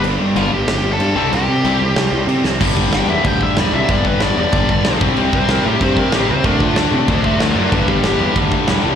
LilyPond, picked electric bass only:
\new Staff \with { instrumentName = "Picked electric bass" } { \clef bass \time 4/4 \key c \major \tempo 4 = 187 g,,8 g,8 g,,8 g,,8 g,,8 g,,8 g,8 c,8 | c,8 c8 c,8 c,8 c,8 c,8 c8 c,8 | \key c \lydian g,,8 g,,8 g,,8 e,8 d,4 e,,8 c,8 | g,,4 g,,8 e,8 g,,8 g,,8 b,,8 c,8 |
c,8 c,8 c,8 a,8 g,4 a,,8 cis,8 | d,4 d,8 c8 d,8 d,8 d,8 fis,8 | g,,8 g,,8 g,,8 e,8 d,4 e,,8 c,8 | }